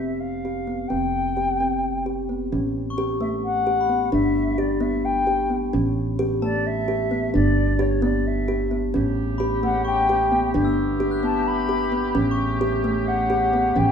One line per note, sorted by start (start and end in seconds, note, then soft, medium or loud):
0.00 0.88 F1 medium
0.00 0.36 C4 medium
0.00 0.21 E5 medium
0.20 0.90 F5 medium
0.45 0.64 G4 medium
0.67 0.87 B3 medium
0.88 2.49 F1 medium
0.88 1.28 C4 medium
0.88 2.05 G5 medium
1.37 1.56 G4 medium
1.60 1.98 C4 medium
2.06 2.25 G4 medium
2.29 2.48 B3 soft
2.52 4.10 A1 medium
2.52 2.90 C#4 medium
2.90 4.05 C#6 medium
2.98 3.17 G4 medium
3.21 3.59 A3 medium
3.21 3.27 E5 medium
3.44 4.09 F#5 medium
3.67 3.86 G4 medium
3.81 4.32 B5 soft
3.89 4.09 B3 medium
4.12 5.70 G1 medium
4.12 4.50 D4 medium
4.12 4.60 E5 medium
4.58 4.77 G4 medium
4.58 4.83 D5 medium
4.80 5.19 B3 medium
4.80 5.06 E5 medium
5.05 5.56 G5 medium
5.27 5.46 G4 medium
5.50 5.69 B3 medium
5.73 7.31 A1 medium
5.73 6.11 C#4 medium
6.19 6.38 G4 medium
6.42 6.80 A3 medium
6.42 6.68 D5 medium
6.42 7.53 A5 medium
6.67 7.34 E5 medium
6.88 7.07 G4 medium
7.11 7.30 B3 medium
7.34 8.92 G1 medium
7.34 7.71 D4 medium
7.34 7.82 D5 medium
7.79 7.98 G4 medium
7.79 8.05 C#5 medium
8.02 8.40 B3 medium
8.02 8.28 D5 medium
8.27 8.78 E5 medium
8.48 8.67 G4 medium
8.71 8.90 B3 medium
8.94 10.52 A1 medium
8.94 10.54 C#3 medium
8.94 10.54 A3 medium
8.94 9.32 C#4 medium
8.94 10.54 G4 medium
9.38 9.59 G4 medium
9.38 10.53 B5 medium
9.63 10.01 A3 medium
9.63 9.85 F#5 medium
9.85 10.50 G5 loud
9.85 10.74 C#6 soft
10.09 10.28 G4 medium
10.31 10.50 B3 medium
10.54 12.12 G1 medium
10.54 12.14 E3 medium
10.54 12.14 B3 medium
10.54 10.92 D4 medium
10.54 13.92 G4 medium
10.65 11.79 E6 soft
11.00 11.19 G4 medium
11.11 12.26 F#6 medium
11.23 11.61 B3 medium
11.23 11.49 A5 medium
11.47 12.16 B5 medium
11.69 11.88 G4 medium
11.92 12.11 B3 medium
12.15 13.72 A1 medium
12.15 13.92 C#3 medium
12.15 13.92 A3 medium
12.15 12.53 C#4 medium
12.31 13.46 C#6 medium
12.61 12.80 G4 medium
12.84 13.22 A3 medium
12.84 13.09 E5 medium
13.08 13.79 F#5 medium
13.30 13.49 G4 medium
13.53 13.72 B3 medium
13.76 13.92 A1 medium
13.76 13.92 C#4 medium
13.76 13.92 G5 medium